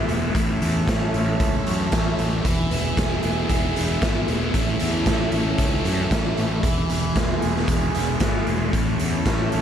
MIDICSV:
0, 0, Header, 1, 5, 480
1, 0, Start_track
1, 0, Tempo, 524476
1, 322, Time_signature, 4, 2, 24, 8
1, 8801, End_track
2, 0, Start_track
2, 0, Title_t, "String section"
2, 0, Program_c, 0, 48
2, 0, Note_on_c, 0, 59, 79
2, 0, Note_on_c, 0, 68, 64
2, 0, Note_on_c, 0, 76, 82
2, 306, Note_off_c, 0, 59, 0
2, 309, Note_on_c, 0, 61, 82
2, 310, Note_off_c, 0, 68, 0
2, 313, Note_on_c, 0, 69, 72
2, 2217, Note_off_c, 0, 61, 0
2, 2219, Note_off_c, 0, 69, 0
2, 2242, Note_on_c, 0, 59, 77
2, 2243, Note_on_c, 0, 68, 73
2, 4142, Note_off_c, 0, 59, 0
2, 4143, Note_off_c, 0, 68, 0
2, 4167, Note_on_c, 0, 61, 70
2, 4172, Note_on_c, 0, 69, 71
2, 6064, Note_off_c, 0, 61, 0
2, 6066, Note_off_c, 0, 69, 0
2, 6084, Note_on_c, 0, 59, 78
2, 6095, Note_on_c, 0, 68, 66
2, 7968, Note_off_c, 0, 76, 0
2, 7982, Note_off_c, 0, 59, 0
2, 7985, Note_on_c, 0, 69, 74
2, 7988, Note_off_c, 0, 68, 0
2, 7991, Note_on_c, 0, 61, 78
2, 7991, Note_on_c, 0, 76, 83
2, 8801, Note_off_c, 0, 61, 0
2, 8801, Note_off_c, 0, 69, 0
2, 8801, Note_off_c, 0, 76, 0
2, 8801, End_track
3, 0, Start_track
3, 0, Title_t, "Distorted electric guitar"
3, 0, Program_c, 1, 30
3, 0, Note_on_c, 1, 52, 67
3, 0, Note_on_c, 1, 59, 70
3, 76, Note_on_c, 1, 56, 71
3, 318, Note_off_c, 1, 59, 0
3, 319, Note_off_c, 1, 56, 0
3, 328, Note_on_c, 1, 45, 74
3, 557, Note_off_c, 1, 52, 0
3, 561, Note_on_c, 1, 52, 75
3, 807, Note_on_c, 1, 57, 70
3, 1043, Note_on_c, 1, 61, 62
3, 1286, Note_off_c, 1, 57, 0
3, 1297, Note_on_c, 1, 57, 72
3, 1526, Note_off_c, 1, 45, 0
3, 1528, Note_off_c, 1, 52, 0
3, 1532, Note_on_c, 1, 52, 61
3, 1766, Note_off_c, 1, 61, 0
3, 1777, Note_on_c, 1, 61, 69
3, 2008, Note_off_c, 1, 57, 0
3, 2019, Note_on_c, 1, 57, 70
3, 2250, Note_off_c, 1, 61, 0
3, 2251, Note_off_c, 1, 57, 0
3, 2252, Note_off_c, 1, 52, 0
3, 2256, Note_on_c, 1, 52, 79
3, 2489, Note_off_c, 1, 52, 0
3, 2493, Note_on_c, 1, 52, 76
3, 2738, Note_on_c, 1, 56, 69
3, 2971, Note_on_c, 1, 59, 60
3, 3202, Note_off_c, 1, 56, 0
3, 3213, Note_on_c, 1, 56, 71
3, 3439, Note_off_c, 1, 52, 0
3, 3443, Note_on_c, 1, 52, 62
3, 3685, Note_off_c, 1, 59, 0
3, 3696, Note_on_c, 1, 59, 71
3, 3929, Note_off_c, 1, 56, 0
3, 3940, Note_on_c, 1, 56, 65
3, 4169, Note_off_c, 1, 59, 0
3, 4171, Note_off_c, 1, 56, 0
3, 4175, Note_on_c, 1, 45, 77
3, 4399, Note_off_c, 1, 52, 0
3, 4403, Note_on_c, 1, 52, 73
3, 4641, Note_on_c, 1, 57, 72
3, 4896, Note_on_c, 1, 61, 62
3, 5112, Note_off_c, 1, 57, 0
3, 5123, Note_on_c, 1, 57, 76
3, 5363, Note_off_c, 1, 52, 0
3, 5366, Note_on_c, 1, 52, 64
3, 5367, Note_off_c, 1, 45, 0
3, 5600, Note_off_c, 1, 61, 0
3, 5611, Note_on_c, 1, 61, 66
3, 5827, Note_off_c, 1, 57, 0
3, 5838, Note_on_c, 1, 57, 69
3, 6075, Note_off_c, 1, 52, 0
3, 6079, Note_off_c, 1, 57, 0
3, 6079, Note_on_c, 1, 52, 80
3, 6085, Note_off_c, 1, 61, 0
3, 6324, Note_off_c, 1, 52, 0
3, 6328, Note_on_c, 1, 52, 74
3, 6575, Note_on_c, 1, 56, 69
3, 6804, Note_on_c, 1, 59, 61
3, 7036, Note_off_c, 1, 56, 0
3, 7047, Note_on_c, 1, 56, 78
3, 7291, Note_off_c, 1, 52, 0
3, 7294, Note_on_c, 1, 52, 63
3, 7515, Note_off_c, 1, 59, 0
3, 7526, Note_on_c, 1, 59, 72
3, 7753, Note_off_c, 1, 56, 0
3, 7764, Note_on_c, 1, 56, 74
3, 7995, Note_on_c, 1, 45, 74
3, 8002, Note_off_c, 1, 56, 0
3, 8003, Note_off_c, 1, 59, 0
3, 8231, Note_off_c, 1, 52, 0
3, 8234, Note_on_c, 1, 52, 79
3, 8487, Note_on_c, 1, 57, 70
3, 8730, Note_on_c, 1, 61, 67
3, 8801, Note_off_c, 1, 45, 0
3, 8801, Note_off_c, 1, 52, 0
3, 8801, Note_off_c, 1, 57, 0
3, 8801, Note_off_c, 1, 61, 0
3, 8801, End_track
4, 0, Start_track
4, 0, Title_t, "Picked electric bass"
4, 0, Program_c, 2, 34
4, 76, Note_on_c, 2, 28, 91
4, 266, Note_off_c, 2, 28, 0
4, 319, Note_on_c, 2, 33, 96
4, 508, Note_off_c, 2, 33, 0
4, 565, Note_on_c, 2, 40, 87
4, 752, Note_off_c, 2, 40, 0
4, 801, Note_on_c, 2, 33, 88
4, 989, Note_off_c, 2, 33, 0
4, 1048, Note_on_c, 2, 33, 96
4, 1233, Note_off_c, 2, 33, 0
4, 1280, Note_on_c, 2, 37, 95
4, 1468, Note_off_c, 2, 37, 0
4, 1531, Note_on_c, 2, 42, 87
4, 1715, Note_off_c, 2, 42, 0
4, 1764, Note_on_c, 2, 33, 82
4, 1951, Note_off_c, 2, 33, 0
4, 2003, Note_on_c, 2, 33, 82
4, 2190, Note_off_c, 2, 33, 0
4, 2239, Note_on_c, 2, 28, 93
4, 2428, Note_off_c, 2, 28, 0
4, 2473, Note_on_c, 2, 28, 81
4, 2664, Note_off_c, 2, 28, 0
4, 2721, Note_on_c, 2, 28, 77
4, 2909, Note_off_c, 2, 28, 0
4, 2959, Note_on_c, 2, 28, 89
4, 3148, Note_off_c, 2, 28, 0
4, 3203, Note_on_c, 2, 28, 90
4, 3390, Note_off_c, 2, 28, 0
4, 3447, Note_on_c, 2, 28, 82
4, 3632, Note_off_c, 2, 28, 0
4, 3681, Note_on_c, 2, 32, 86
4, 3868, Note_off_c, 2, 32, 0
4, 3922, Note_on_c, 2, 28, 83
4, 4109, Note_off_c, 2, 28, 0
4, 4156, Note_on_c, 2, 33, 89
4, 4345, Note_off_c, 2, 33, 0
4, 4409, Note_on_c, 2, 40, 77
4, 4593, Note_off_c, 2, 40, 0
4, 4633, Note_on_c, 2, 33, 83
4, 4823, Note_off_c, 2, 33, 0
4, 4873, Note_on_c, 2, 33, 89
4, 5063, Note_off_c, 2, 33, 0
4, 5111, Note_on_c, 2, 37, 84
4, 5302, Note_off_c, 2, 37, 0
4, 5356, Note_on_c, 2, 42, 83
4, 5545, Note_off_c, 2, 42, 0
4, 5593, Note_on_c, 2, 33, 80
4, 5783, Note_off_c, 2, 33, 0
4, 5843, Note_on_c, 2, 33, 84
4, 6029, Note_off_c, 2, 33, 0
4, 6071, Note_on_c, 2, 28, 97
4, 6262, Note_off_c, 2, 28, 0
4, 6320, Note_on_c, 2, 28, 81
4, 6507, Note_off_c, 2, 28, 0
4, 6553, Note_on_c, 2, 28, 83
4, 6743, Note_off_c, 2, 28, 0
4, 6806, Note_on_c, 2, 28, 90
4, 6991, Note_off_c, 2, 28, 0
4, 7027, Note_on_c, 2, 28, 82
4, 7219, Note_off_c, 2, 28, 0
4, 7269, Note_on_c, 2, 28, 89
4, 7460, Note_off_c, 2, 28, 0
4, 7510, Note_on_c, 2, 32, 90
4, 7701, Note_off_c, 2, 32, 0
4, 7754, Note_on_c, 2, 28, 89
4, 7944, Note_off_c, 2, 28, 0
4, 7991, Note_on_c, 2, 33, 87
4, 8182, Note_off_c, 2, 33, 0
4, 8244, Note_on_c, 2, 40, 84
4, 8430, Note_off_c, 2, 40, 0
4, 8472, Note_on_c, 2, 33, 80
4, 8662, Note_off_c, 2, 33, 0
4, 8727, Note_on_c, 2, 33, 88
4, 8801, Note_off_c, 2, 33, 0
4, 8801, End_track
5, 0, Start_track
5, 0, Title_t, "Drums"
5, 79, Note_on_c, 9, 42, 73
5, 171, Note_off_c, 9, 42, 0
5, 319, Note_on_c, 9, 36, 113
5, 320, Note_on_c, 9, 42, 93
5, 411, Note_off_c, 9, 36, 0
5, 412, Note_off_c, 9, 42, 0
5, 566, Note_on_c, 9, 42, 67
5, 657, Note_off_c, 9, 42, 0
5, 801, Note_on_c, 9, 36, 105
5, 804, Note_on_c, 9, 42, 90
5, 814, Note_on_c, 9, 38, 114
5, 893, Note_off_c, 9, 36, 0
5, 895, Note_off_c, 9, 42, 0
5, 905, Note_off_c, 9, 38, 0
5, 1043, Note_on_c, 9, 42, 63
5, 1135, Note_off_c, 9, 42, 0
5, 1281, Note_on_c, 9, 42, 93
5, 1282, Note_on_c, 9, 36, 117
5, 1372, Note_off_c, 9, 42, 0
5, 1374, Note_off_c, 9, 36, 0
5, 1525, Note_on_c, 9, 42, 70
5, 1616, Note_off_c, 9, 42, 0
5, 1756, Note_on_c, 9, 42, 97
5, 1762, Note_on_c, 9, 36, 113
5, 1766, Note_on_c, 9, 38, 113
5, 1848, Note_off_c, 9, 42, 0
5, 1853, Note_off_c, 9, 36, 0
5, 1858, Note_off_c, 9, 38, 0
5, 2001, Note_on_c, 9, 42, 71
5, 2092, Note_off_c, 9, 42, 0
5, 2240, Note_on_c, 9, 42, 90
5, 2243, Note_on_c, 9, 36, 105
5, 2332, Note_off_c, 9, 42, 0
5, 2334, Note_off_c, 9, 36, 0
5, 2481, Note_on_c, 9, 42, 74
5, 2573, Note_off_c, 9, 42, 0
5, 2722, Note_on_c, 9, 36, 100
5, 2722, Note_on_c, 9, 42, 97
5, 2733, Note_on_c, 9, 38, 115
5, 2813, Note_off_c, 9, 36, 0
5, 2814, Note_off_c, 9, 42, 0
5, 2824, Note_off_c, 9, 38, 0
5, 2953, Note_on_c, 9, 42, 67
5, 3045, Note_off_c, 9, 42, 0
5, 3197, Note_on_c, 9, 42, 99
5, 3199, Note_on_c, 9, 36, 106
5, 3289, Note_off_c, 9, 42, 0
5, 3291, Note_off_c, 9, 36, 0
5, 3443, Note_on_c, 9, 42, 74
5, 3534, Note_off_c, 9, 42, 0
5, 3677, Note_on_c, 9, 42, 91
5, 3679, Note_on_c, 9, 36, 116
5, 3687, Note_on_c, 9, 38, 110
5, 3769, Note_off_c, 9, 42, 0
5, 3770, Note_off_c, 9, 36, 0
5, 3779, Note_off_c, 9, 38, 0
5, 3917, Note_on_c, 9, 42, 74
5, 4008, Note_off_c, 9, 42, 0
5, 4154, Note_on_c, 9, 42, 94
5, 4156, Note_on_c, 9, 36, 105
5, 4246, Note_off_c, 9, 42, 0
5, 4248, Note_off_c, 9, 36, 0
5, 4389, Note_on_c, 9, 42, 71
5, 4480, Note_off_c, 9, 42, 0
5, 4630, Note_on_c, 9, 42, 89
5, 4632, Note_on_c, 9, 36, 102
5, 4640, Note_on_c, 9, 38, 105
5, 4722, Note_off_c, 9, 42, 0
5, 4724, Note_off_c, 9, 36, 0
5, 4732, Note_off_c, 9, 38, 0
5, 4866, Note_on_c, 9, 42, 60
5, 4958, Note_off_c, 9, 42, 0
5, 5108, Note_on_c, 9, 42, 94
5, 5112, Note_on_c, 9, 36, 107
5, 5199, Note_off_c, 9, 42, 0
5, 5203, Note_off_c, 9, 36, 0
5, 5355, Note_on_c, 9, 42, 72
5, 5446, Note_off_c, 9, 42, 0
5, 5592, Note_on_c, 9, 36, 110
5, 5594, Note_on_c, 9, 42, 97
5, 5604, Note_on_c, 9, 38, 112
5, 5684, Note_off_c, 9, 36, 0
5, 5685, Note_off_c, 9, 42, 0
5, 5695, Note_off_c, 9, 38, 0
5, 5833, Note_on_c, 9, 42, 71
5, 5925, Note_off_c, 9, 42, 0
5, 6070, Note_on_c, 9, 36, 108
5, 6071, Note_on_c, 9, 42, 89
5, 6161, Note_off_c, 9, 36, 0
5, 6162, Note_off_c, 9, 42, 0
5, 6311, Note_on_c, 9, 42, 71
5, 6403, Note_off_c, 9, 42, 0
5, 6551, Note_on_c, 9, 36, 106
5, 6552, Note_on_c, 9, 42, 95
5, 6562, Note_on_c, 9, 38, 115
5, 6642, Note_off_c, 9, 36, 0
5, 6644, Note_off_c, 9, 42, 0
5, 6654, Note_off_c, 9, 38, 0
5, 6792, Note_on_c, 9, 42, 68
5, 6883, Note_off_c, 9, 42, 0
5, 6921, Note_on_c, 9, 38, 31
5, 7012, Note_off_c, 9, 38, 0
5, 7028, Note_on_c, 9, 42, 104
5, 7029, Note_on_c, 9, 36, 102
5, 7120, Note_off_c, 9, 42, 0
5, 7121, Note_off_c, 9, 36, 0
5, 7272, Note_on_c, 9, 42, 80
5, 7363, Note_off_c, 9, 42, 0
5, 7505, Note_on_c, 9, 42, 106
5, 7510, Note_on_c, 9, 36, 105
5, 7515, Note_on_c, 9, 38, 114
5, 7597, Note_off_c, 9, 42, 0
5, 7601, Note_off_c, 9, 36, 0
5, 7607, Note_off_c, 9, 38, 0
5, 7749, Note_on_c, 9, 42, 70
5, 7841, Note_off_c, 9, 42, 0
5, 7992, Note_on_c, 9, 36, 107
5, 7993, Note_on_c, 9, 42, 94
5, 8083, Note_off_c, 9, 36, 0
5, 8084, Note_off_c, 9, 42, 0
5, 8231, Note_on_c, 9, 42, 67
5, 8322, Note_off_c, 9, 42, 0
5, 8471, Note_on_c, 9, 42, 96
5, 8472, Note_on_c, 9, 36, 106
5, 8481, Note_on_c, 9, 38, 111
5, 8563, Note_off_c, 9, 42, 0
5, 8564, Note_off_c, 9, 36, 0
5, 8573, Note_off_c, 9, 38, 0
5, 8711, Note_on_c, 9, 42, 66
5, 8801, Note_off_c, 9, 42, 0
5, 8801, End_track
0, 0, End_of_file